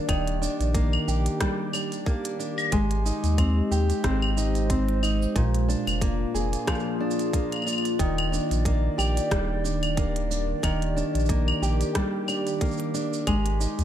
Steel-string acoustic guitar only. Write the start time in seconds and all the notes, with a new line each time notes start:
Already playing: G3 A#3 D4 G4
0.09 D#3
0.42 D4
0.75 A#3
1.08 G4
1.41 G3
1.74 D4
2.07 A#3
2.39 D4
2.72 G#3
3.06 D#4
3.38 C4
3.71 G4
4.04 C4
4.37 D#4
4.70 C4
5.03 D#4
5.36 A#2
5.68 D4
6.01 A#3
6.34 G#4
6.68 F3
7.00 D4
7.33 A#3
7.66 D4
7.99 D#3
8.32 D4
8.65 A#3
8.98 G4
9.31 G3
9.64 D4
9.97 A#3
10.31 D4
10.63 D#3
10.96 D4
11.29 A#3
11.62 G4
11.95 G3
12.28 D4
12.61 A#3
12.94 D4
13.27 G#3
13.60 D#4